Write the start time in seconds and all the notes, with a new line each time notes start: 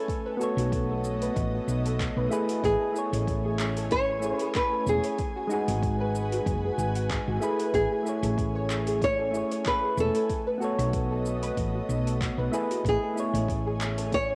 Already playing: A3 A4
0.08 B3 D#5, kick, open hi-hat, cabasa
0.26 B4
0.37 B3 F#4
0.41 A4 C#5, cabasa
0.57 B1 F#4, open hi-hat, cabasa
0.72 kick, open hi-hat, cabasa
0.90 A4
1.04 cabasa
1.22 B4, open hi-hat, cabasa
1.36 A1, kick, open hi-hat, cabasa
1.54 F#4
1.68 B1, cabasa
1.86 A4, open hi-hat, cabasa
2.00 kick, clap, open hi-hat, cabasa
2.17 B1 B4
2.30 A3 E4 G#4 B4, cabasa
2.49 F#4, open hi-hat, cabasa
2.64 A1 C#4 G#4 G#5, kick, open hi-hat, cabasa
2.81 A4
2.92 A3 E4, cabasa
2.96 G#4 C#5
3.13 A1 C#5, open hi-hat, cabasa
3.27 kick, open hi-hat, cabasa
3.45 G#4
3.59 clap, cabasa
3.77 A4, open hi-hat, cabasa
3.91 C#5, kick, open hi-hat, cabasa
4.09 C#5
4.20 A3 E4, cabasa
4.24 G#4 C#5
4.37 G#4 B4, open hi-hat, cabasa
4.55 B4, kick, clap, open hi-hat, cabasa
4.73 A4
4.86 E1 G#4, cabasa
5.04 C#5, open hi-hat, cabasa
5.18 F#4 B4, kick, open hi-hat, cabasa
5.36 F#4
5.47 G#3 D#4, cabasa
5.51 F#4 G#4
5.68 G#1 G#4, open hi-hat, cabasa
5.83 kick, open hi-hat, cabasa
6.00 B4
6.15 cabasa
6.32 F#4, open hi-hat, cabasa
6.46 F#1, kick, open hi-hat, cabasa
6.64 G#4
6.78 G#1 G#5, cabasa
6.96 F#5, open hi-hat, cabasa
7.10 kick, clap, open hi-hat, cabasa
7.28 G#1 F#4
7.40 A3 E4 G#4 B4 B5, cabasa
7.60 B4, open hi-hat, cabasa
7.74 A1 A3 C#4 G#4, kick, open hi-hat, cabasa
7.92 G#4
8.03 A3 E4, cabasa
8.07 G#4 C#5
8.23 A1 A4, open hi-hat, cabasa
8.38 kick, open hi-hat, cabasa
8.55 C#5
8.70 clap, cabasa
8.87 G#4, open hi-hat, cabasa
9.02 C#5, kick, open hi-hat, cabasa
9.19 A4
9.31 A3 E4, cabasa
9.35 G#4 C#5
9.51 C#5, open hi-hat, cabasa
9.66 B4, kick, clap, open hi-hat, cabasa
9.83 G#4
9.97 E1 A4, cabasa
10.15 A4, open hi-hat, cabasa
10.29 B3 D#5, kick, open hi-hat, cabasa
10.47 B4
10.58 B3 F#4, cabasa
10.62 A4 C#5
10.79 B1 F#4, open hi-hat, cabasa
10.93 kick, open hi-hat, cabasa
11.11 A4
11.26 cabasa
11.43 B4, open hi-hat, cabasa
11.57 A1, kick, open hi-hat, cabasa
11.75 F#4
11.89 B1, cabasa
12.06 A4, open hi-hat, cabasa
12.21 kick, clap, open hi-hat, cabasa
12.38 B1 B4
12.51 A3 E4 G#4 B4, cabasa
12.70 F#4, open hi-hat, cabasa
12.85 A1 C#4 G#4 G#5, kick, open hi-hat, cabasa
13.03 A4
13.13 A3 E4 G#4
13.18 C#5, cabasa
13.33 A1 C#5, open hi-hat, cabasa
13.48 kick, open hi-hat, cabasa
13.66 G#4
13.81 clap, cabasa
13.98 A4, open hi-hat, cabasa
14.12 C#5, kick, open hi-hat, cabasa
14.30 C#5